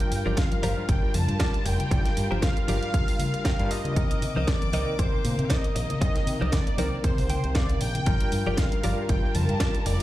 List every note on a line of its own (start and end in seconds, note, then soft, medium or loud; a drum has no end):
0.00 0.60 G3 medium
0.00 3.92 G3 medium
0.00 0.60 D4 medium
0.00 0.61 F4 medium
0.00 3.92 F4 medium
0.00 0.61 A#4 loud
0.00 3.92 A#4 medium
0.00 0.39 G5 loud
0.00 muted clean electric guitar stroke soft
0.00 closed hi-hat medium
0.12 0.22 G2 medium
0.12 open hi-hat loud
0.26 0.34 G1 medium
0.26 0.37 F4 medium
0.26 0.37 G4 medium
0.26 0.38 A#4 medium
0.26 0.38 D5 medium
0.26 high conga medium
0.37 0.90 F5 loud
0.37 kick loud
0.37 snare loud
0.37 closed hi-hat medium
0.52 muted clean electric guitar stroke soft
0.52 closed hi-hat soft
0.52 high conga medium
0.62 0.73 G1 medium
0.62 1.88 G3 medium
0.62 1.88 D4 medium
0.62 1.89 F4 medium
0.62 0.83 F4 medium
0.62 0.83 G4 medium
0.62 0.83 A#4 medium
0.62 1.89 A#4 medium
0.62 0.83 C5 loud
0.62 open hi-hat loud
0.62 high conga loud
0.89 0.99 G1 medium
0.89 1.16 G5 loud
0.89 kick loud
0.89 closed hi-hat medium
1.03 muted clean electric guitar stroke soft
1.14 1.24 F2 medium
1.14 1.67 A5 loud
1.14 open hi-hat loud
1.14 low conga loud
1.28 1.36 G2 loud
1.28 muted clean electric guitar stroke soft
1.28 closed hi-hat soft
1.40 1.54 F4 medium
1.40 1.54 G4 medium
1.40 1.54 A#4 medium
1.40 1.54 D5 loud
1.40 kick loud
1.40 snare loud
1.40 closed hi-hat medium
1.54 closed hi-hat soft
1.65 1.75 F1 loud
1.65 2.42 G5 loud
1.65 muted clean electric guitar stroke loud
1.65 open hi-hat loud
1.80 muted clean electric guitar stroke soft
1.80 closed hi-hat medium
1.80 low conga medium
1.90 2.01 G1 loud
1.90 2.65 G3 medium
1.90 2.65 D4 medium
1.90 2.66 F4 medium
1.90 2.66 D5 medium
1.90 muted clean electric guitar stroke loud
1.90 kick loud
1.90 closed hi-hat medium
1.90 high conga medium
2.05 muted clean electric guitar stroke soft
2.05 snare soft
2.05 closed hi-hat medium
2.17 2.27 G2 medium
2.17 open hi-hat loud
2.31 2.39 G1 medium
2.31 2.42 F4 medium
2.31 2.42 G4 medium
2.31 2.43 A#4 medium
2.31 2.43 C5 loud
2.31 high conga loud
2.42 2.66 F5 loud
2.42 kick loud
2.42 snare loud
2.42 closed hi-hat medium
2.57 muted clean electric guitar stroke soft
2.57 closed hi-hat soft
2.67 2.78 G1 medium
2.67 3.56 G3 medium
2.67 3.56 D4 medium
2.67 2.88 F4 medium
2.67 3.57 F4 medium
2.67 2.88 G4 medium
2.67 2.88 A#4 medium
2.67 3.57 A#4 medium
2.67 2.88 D5 medium
2.67 3.72 F5 loud
2.67 open hi-hat loud
2.67 high conga medium
2.83 closed hi-hat soft
2.94 kick loud
2.94 closed hi-hat medium
3.08 muted clean electric guitar stroke soft
3.08 open hi-hat medium
3.19 open hi-hat loud
3.19 low conga loud
3.34 muted clean electric guitar stroke soft
3.34 closed hi-hat soft
3.45 3.59 F4 medium
3.45 3.59 G4 medium
3.45 3.59 A#4 medium
3.45 3.60 F5 loud
3.45 3.69 G5 medium
3.45 kick loud
3.45 snare loud
3.45 closed hi-hat medium
3.59 3.67 G2 medium
3.59 3.93 G3 loud
3.59 3.94 D4 medium
3.59 3.94 F4 medium
3.59 3.94 A#4 loud
3.59 closed hi-hat soft
3.71 4.49 D#5 loud
3.71 3.95 F5 medium
3.71 muted clean electric guitar stroke loud
3.71 open hi-hat loud
3.85 muted clean electric guitar stroke soft
3.85 closed hi-hat soft
3.85 low conga medium
3.95 4.06 C2 loud
3.95 4.70 D#3 medium
3.95 8.03 A#3 medium
3.95 4.70 C4 medium
3.95 4.71 A#4 loud
3.95 5.99 D6 medium
3.95 muted clean electric guitar stroke loud
3.95 kick loud
3.95 closed hi-hat medium
3.95 high conga medium
4.11 muted clean electric guitar stroke soft
4.11 closed hi-hat medium
4.22 4.32 C3 medium
4.22 open hi-hat loud
4.36 4.44 C2 medium
4.36 4.48 D#4 medium
4.36 4.48 A#4 medium
4.36 4.48 C5 medium
4.36 4.48 D#5 medium
4.36 high conga medium
4.47 5.01 D5 loud
4.47 kick loud
4.47 snare loud
4.47 closed hi-hat medium
4.62 muted clean electric guitar stroke soft
4.62 closed hi-hat soft
4.62 high conga medium
4.72 4.83 C2 medium
4.72 5.98 D#3 medium
4.72 5.99 C4 medium
4.72 4.93 D#4 medium
4.72 4.93 A#4 medium
4.72 5.99 A#4 medium
4.72 4.93 C5 medium
4.72 4.93 D#5 loud
4.72 open hi-hat loud
4.72 high conga medium
4.99 5.09 C2 medium
4.99 5.46 C5 medium
4.99 kick loud
4.99 closed hi-hat medium
5.13 muted clean electric guitar stroke soft
5.25 5.34 A#2 medium
5.25 open hi-hat loud
5.25 low conga medium
5.39 5.47 C3 loud
5.39 muted clean electric guitar stroke soft
5.39 closed hi-hat soft
5.44 5.52 F5 medium
5.50 5.64 D#4 medium
5.50 5.64 A#4 medium
5.50 5.64 C5 medium
5.50 5.65 D5 loud
5.50 5.75 D#5 loud
5.50 kick loud
5.50 snare loud
5.50 closed hi-hat medium
5.64 closed hi-hat soft
5.75 5.86 A#1 loud
5.75 6.54 D#5 loud
5.75 muted clean electric guitar stroke loud
5.75 open hi-hat loud
5.89 muted clean electric guitar stroke soft
5.89 closed hi-hat medium
5.89 low conga medium
6.00 6.11 C2 loud
6.00 6.75 D#3 medium
6.00 6.75 C4 medium
6.00 6.76 D#5 medium
6.00 muted clean electric guitar stroke loud
6.00 kick loud
6.00 closed hi-hat medium
6.00 high conga medium
6.15 muted clean electric guitar stroke soft
6.15 snare soft
6.15 closed hi-hat medium
6.27 6.37 C3 medium
6.27 open hi-hat loud
6.41 6.49 C2 medium
6.41 6.53 D#4 medium
6.41 6.53 A#4 medium
6.41 6.53 C5 medium
6.41 6.53 D5 medium
6.41 high conga medium
6.52 7.06 D5 loud
6.52 kick loud
6.52 snare loud
6.52 closed hi-hat medium
6.67 muted clean electric guitar stroke soft
6.67 closed hi-hat soft
6.78 6.88 C2 medium
6.78 8.03 D#3 medium
6.78 8.04 C4 medium
6.78 6.98 D#4 medium
6.78 6.98 A#4 medium
6.78 8.04 A#4 medium
6.78 6.98 C5 medium
6.78 6.99 D5 loud
6.78 open hi-hat loud
6.78 high conga medium
7.04 7.14 C3 medium
7.04 7.57 C5 medium
7.04 kick loud
7.04 closed hi-hat medium
7.18 7.35 C2 loud
7.18 muted clean electric guitar stroke soft
7.18 open hi-hat medium
7.30 7.54 G5 medium
7.30 open hi-hat loud
7.30 low conga medium
7.44 7.76 C2 loud
7.44 muted clean electric guitar stroke soft
7.44 closed hi-hat soft
7.55 7.70 D#4 medium
7.55 7.70 A#4 medium
7.55 7.70 C5 medium
7.55 7.80 D5 loud
7.55 7.70 D5 loud
7.55 7.95 F5 medium
7.55 kick loud
7.55 snare loud
7.55 closed hi-hat medium
7.69 closed hi-hat soft
7.81 8.00 A#1 loud
7.81 8.60 G5 loud
7.81 muted clean electric guitar stroke loud
7.81 open hi-hat loud
7.95 muted clean electric guitar stroke soft
7.95 closed hi-hat medium
7.95 low conga medium
8.06 8.17 G1 loud
8.06 8.80 G3 medium
8.06 10.03 G3 medium
8.06 8.81 D4 medium
8.06 10.03 F4 medium
8.06 8.81 F4 medium
8.06 10.03 A#4 loud
8.06 8.81 A#4 loud
8.06 muted clean electric guitar stroke loud
8.06 kick loud
8.06 closed hi-hat medium
8.06 high conga medium
8.21 muted clean electric guitar stroke soft
8.21 closed hi-hat medium
8.32 8.42 G2 medium
8.32 open hi-hat loud
8.46 8.54 G1 medium
8.46 8.58 F4 medium
8.46 8.58 G4 medium
8.46 8.58 A#4 medium
8.46 8.58 D5 loud
8.46 high conga medium
8.57 9.08 F5 loud
8.57 kick loud
8.57 snare loud
8.57 closed hi-hat medium
8.72 muted clean electric guitar stroke soft
8.72 closed hi-hat soft
8.72 high conga medium
8.83 8.94 G1 medium
8.83 10.03 G3 medium
8.83 10.03 D4 medium
8.83 10.03 F4 medium
8.83 9.04 F4 medium
8.83 9.04 G4 medium
8.83 9.04 A#4 medium
8.83 10.03 A#4 medium
8.83 9.04 D5 loud
8.83 open hi-hat loud
8.83 high conga medium
9.09 9.19 G1 medium
9.09 9.36 G5 medium
9.09 kick loud
9.09 closed hi-hat medium
9.23 muted clean electric guitar stroke soft
9.34 9.45 F2 medium
9.34 9.86 A5 loud
9.34 open hi-hat loud
9.34 low conga medium
9.49 9.57 G2 loud
9.49 muted clean electric guitar stroke soft
9.49 closed hi-hat soft
9.60 9.75 F4 loud
9.60 9.75 G4 medium
9.60 9.75 A#4 medium
9.60 9.75 D5 loud
9.60 kick loud
9.60 snare loud
9.60 closed hi-hat medium
9.75 closed hi-hat soft
9.86 9.96 F1 medium
9.86 10.03 D5 loud
9.86 muted clean electric guitar stroke loud
9.86 open hi-hat loud